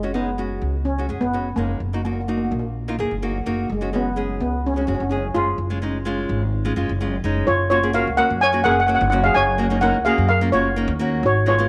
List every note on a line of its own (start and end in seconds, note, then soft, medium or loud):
0.00 0.58 F#1 medium
0.00 0.16 G#3 medium
0.00 0.10 G#3 medium
0.00 0.10 C#4 medium
0.04 0.11 F#4 medium
0.14 0.29 G#3 medium
0.14 0.82 B3 medium
0.14 0.29 C#4 medium
0.14 0.30 D#4 medium
0.38 0.74 G#3 medium
0.38 0.75 C#4 medium
0.38 0.75 F#4 medium
0.62 1.06 C#2 medium
0.85 1.19 C#4 medium
0.98 1.05 G#3 medium
0.98 1.05 C#4 medium
0.98 1.06 F#4 medium
1.09 1.21 F#1 medium
1.09 1.24 G#3 medium
1.09 1.24 C#4 medium
1.09 1.24 G#4 medium
1.21 1.55 F#1 medium
1.21 1.54 B3 medium
1.33 1.48 G#3 medium
1.33 1.48 C#4 medium
1.33 1.48 F#4 medium
1.56 1.79 F#1 medium
1.56 1.79 G#3 medium
1.56 2.04 A#3 medium
1.56 1.79 C#4 medium
1.56 1.79 D#4 medium
1.80 2.47 F#1 medium
1.93 2.00 A#3 medium
1.93 2.00 D#4 medium
1.93 2.00 F#4 medium
2.05 2.11 A#3 medium
2.05 2.19 A#3 medium
2.05 2.19 D#4 medium
2.05 2.20 F#4 medium
2.13 2.19 A#3 medium
2.20 2.27 A#3 medium
2.28 2.35 A#3 soft
2.28 2.64 A#3 medium
2.28 2.64 D#4 medium
2.28 2.64 F#4 medium
2.37 2.43 A#3 medium
2.44 2.50 A#3 medium
2.51 2.96 A#1 medium
2.51 2.58 A#3 medium
2.59 2.66 A#3 medium
2.88 2.94 A#3 medium
2.88 2.95 D#4 medium
2.88 2.95 F4 medium
2.99 3.10 F#1 medium
2.99 3.13 A#3 medium
2.99 3.14 D#4 medium
2.99 3.14 G#4 medium
3.11 3.44 F#1 medium
3.22 3.37 A#3 medium
3.22 3.37 D#4 medium
3.22 3.37 F#4 medium
3.46 3.68 F#1 medium
3.46 3.68 A#3 medium
3.46 3.67 D#4 medium
3.46 3.68 F#4 medium
3.70 4.36 F#1 medium
3.70 3.95 G#3 medium
3.81 3.88 G#3 medium
3.81 3.88 C#4 medium
3.81 3.89 F#4 medium
3.93 4.08 G#3 medium
3.93 4.38 B3 medium
3.93 4.08 C#4 medium
3.93 4.08 F#4 medium
4.16 4.53 G#3 medium
4.16 4.53 C#4 medium
4.16 4.53 G#4 medium
4.40 4.85 C#2 medium
4.40 4.52 B3 medium
4.66 4.73 C#4 medium
4.74 4.83 G#3 medium
4.74 4.80 C#4 medium
4.74 4.83 C#4 medium
4.74 4.84 F#4 medium
4.81 4.86 C#4 medium
4.87 4.99 F#1 medium
4.87 5.02 G#3 medium
4.87 4.93 C#4 medium
4.87 5.02 C#4 medium
4.87 5.03 F#4 medium
4.94 5.01 C#4 medium
5.00 5.33 F#1 medium
5.00 5.08 C#4 medium
5.09 5.26 G#3 medium
5.09 5.16 C#4 medium
5.09 5.26 C#4 medium
5.09 5.26 G#4 medium
5.17 5.25 C#4 medium
5.34 5.57 F#1 medium
5.34 5.56 G#3 medium
5.34 5.57 C#4 medium
5.34 6.96 F4 medium
5.34 5.57 G#4 medium
5.58 6.25 F#1 medium
5.70 5.77 G#3 medium
5.70 5.77 C#4 medium
5.70 5.78 F4 medium
5.82 5.97 G#3 medium
5.82 5.97 C#4 medium
5.82 5.97 D#4 medium
6.05 6.42 G#3 medium
6.05 6.42 C#4 medium
6.05 6.42 F4 loud
6.29 6.73 G#1 medium
6.65 6.72 G#3 medium
6.65 6.72 C#4 medium
6.65 6.72 F4 medium
6.76 6.88 F#1 medium
6.76 6.91 G#3 medium
6.76 6.91 C#4 medium
6.76 6.92 F4 medium
6.89 7.22 F#1 medium
7.01 7.15 G#3 medium
7.01 7.15 C#4 medium
7.01 7.15 F4 medium
7.24 7.46 F#1 medium
7.24 7.45 G#3 medium
7.24 7.46 C#4 medium
7.24 7.46 D#4 medium
7.47 8.03 F#1 medium
7.47 7.69 F4 medium
7.47 7.69 C#5 medium
7.70 7.78 A#3 medium
7.70 7.78 C#4 medium
7.70 7.93 F4 medium
7.70 7.79 F#4 medium
7.70 7.95 C#5 loud
7.83 7.90 A#3 medium
7.83 7.90 C#4 medium
7.83 7.90 G#4 medium
7.93 8.09 A#3 medium
7.93 8.09 C#4 medium
7.93 8.09 F#4 medium
7.93 8.06 A#4 medium
7.93 8.05 F5 medium
8.07 8.18 C#2 medium
8.17 8.39 A#3 medium
8.17 8.39 C#4 medium
8.17 8.39 F#4 medium
8.17 8.40 A#4 medium
8.17 8.42 F#5 loud
8.30 8.63 F#2 medium
8.41 8.64 C#5 medium
8.41 8.66 G#5 loud
8.53 8.60 A#3 medium
8.53 8.60 C#4 medium
8.53 8.61 F#4 medium
8.64 8.98 F#1 medium
8.64 8.79 A#3 medium
8.64 8.80 C#4 medium
8.64 8.80 G#4 medium
8.64 8.73 A#4 medium
8.64 8.70 F#5 loud
8.71 8.79 F#5 medium
8.80 8.86 F#5 medium
8.87 9.03 A#3 medium
8.87 9.03 C#4 medium
8.87 9.03 F#4 medium
8.87 8.94 F#5 medium
8.95 9.01 F#5 medium
9.01 9.33 F#1 loud
9.01 9.09 F#5 medium
9.10 9.40 A#3 medium
9.10 9.41 C#4 medium
9.10 9.41 F#4 medium
9.10 9.18 F#5 medium
9.24 9.35 G#4 medium
9.24 9.35 F5 medium
9.34 9.91 F#1 medium
9.34 9.80 C#5 medium
9.34 9.83 G#5 loud
9.58 9.66 A#3 medium
9.58 9.66 C#4 medium
9.58 9.67 F#4 medium
9.70 9.77 A#3 medium
9.70 9.78 C#4 medium
9.70 9.78 D#4 medium
9.81 9.96 A#3 medium
9.81 9.97 C#4 medium
9.81 9.97 D#4 medium
9.81 10.05 A#4 medium
9.81 10.04 F#5 medium
9.94 10.05 C#2 medium
10.05 10.27 A#3 medium
10.05 10.27 C#4 medium
10.05 10.28 F#4 medium
10.05 10.28 G#4 medium
10.05 10.27 F5 medium
10.18 10.50 F#2 medium
10.29 10.52 A#4 medium
10.29 10.53 F5 medium
10.41 10.48 A#3 medium
10.41 10.48 C#4 medium
10.41 10.49 F4 medium
10.52 10.86 F#1 medium
10.52 10.67 A#3 medium
10.52 10.68 C#4 medium
10.52 10.97 F4 medium
10.52 10.68 F#4 medium
10.52 10.96 C#5 medium
10.76 10.91 A#3 medium
10.76 10.91 C#4 medium
10.76 10.91 D#4 medium
10.88 11.21 D#2 loud
10.99 11.23 A#3 medium
10.99 11.24 C#4 medium
10.99 11.24 F#4 medium
11.23 11.69 G#1 medium
11.23 11.46 F#4 medium
11.23 11.47 C#5 medium
11.46 11.54 G#3 medium
11.46 11.54 B3 medium
11.46 11.54 D#4 medium
11.46 11.69 F4 medium
11.46 11.69 C#5 medium
11.58 11.66 G#3 medium
11.58 11.66 B3 medium
11.58 11.66 F4 medium